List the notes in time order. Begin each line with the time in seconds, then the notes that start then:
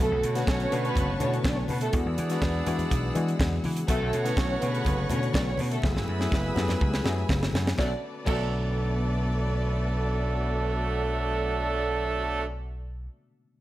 0.00 D3 A3 B3 C#4 F#4 A4 B4 C#5 A5 C#6
0.11 B1
0.23 B2, closed hi-hat, muted conga
0.35 D3 A3 B3 C#4 F#4 B4, snare, closed hi-hat
0.47 B1 C#4 C#5, kick, snare, high conga
0.60 C#4 C#5, closed hi-hat
0.72 B2 D3 A3 B3 C#4 F#4 B4, closed hi-hat
0.85 closed hi-hat
0.95 F#1, kick, closed hi-hat, low conga
1.20 B2 D3 A3 B3 C#4 E4 C#5, closed hi-hat, muted conga, low conga
1.28 F#4
1.34 closed hi-hat
1.44 B1 D4 D5, kick, snare, high conga
1.57 C#4 C#5
1.68 B2 B3 B4, open hi-hat, high conga
1.81 A3 A4, closed hi-hat
1.93 E2 E3 G#3 B3 D4 F#4 G#4 B4 D5 F#5 E6, kick, closed hi-hat, muted conga
2.06 E2
2.18 E3, closed hi-hat, muted conga
2.30 E3 G#3 B3 D4 F#4, snare, closed hi-hat
2.42 E2, kick, snare, high conga
2.66 E3 G#3 B3 D4 F#4, closed hi-hat, low conga
2.79 closed hi-hat, low conga
2.90 B1, kick, closed hi-hat, muted conga
3.15 E3 G#3 B3 D4 F#4, closed hi-hat, muted conga
3.28 closed hi-hat
3.39 E2, kick, snare, high conga
3.64 E3, open hi-hat, high conga
3.76 closed hi-hat
3.88 B1 D3 A3 B3 C#4 F#4 A4 B4 C#5 F#5 C#6, kick, closed hi-hat, muted conga
4.02 B1
4.13 B2, closed hi-hat, muted conga
4.24 D3 A3 B3 C#4 E4 B4, snare, closed hi-hat
4.37 B1 C#4 C#5, kick, snare, high conga
4.49 C#4 C#5
4.60 B2 C#3 A3 B3 C#4 G#4 B4, closed hi-hat
4.67 D3
4.75 closed hi-hat
4.85 F#1, kick, closed hi-hat, low conga
5.09 B2 C#3 A3 B3 C#4 F#4 C#5, closed hi-hat, muted conga, low conga
5.15 D3
5.23 closed hi-hat
5.33 B1 D4 D5, kick, snare, high conga
5.47 C#4 C#5
5.57 B2 B3 B4, open hi-hat, high conga
5.71 A3 A4, closed hi-hat
5.82 F#1 F#3 A3 B3 E4 G#4 B4 G#5 B5 E6, kick, snare, muted conga
5.96 F#1, snare
6.08 F#2, muted conga
6.19 F#3 A3 B3 E4 G#4, snare
6.32 F#1, kick, snare, high conga
6.55 F#2 F#3 A3 B3 E4 G4, snare, low conga
6.63 G#4
6.68 snare, low conga
6.80 C#2, kick, muted conga
6.94 snare
7.04 F#2 F#3 G#3 B3 E4 G#4, snare, muted conga
7.10 A3
7.29 F#1, kick, snare, high conga
7.43 snare
7.53 F#2, snare, high conga
7.67 snare
7.76 B1 D3 F#3 A3 B3 D4 F#4 A4 B4 D5, kick, snare, muted conga
7.81 C#4 F#4
8.24 B1 D3 F#3 A3 B3 D4 F#4 A4 D5, kick, crash, muted conga
8.29 D4 F#4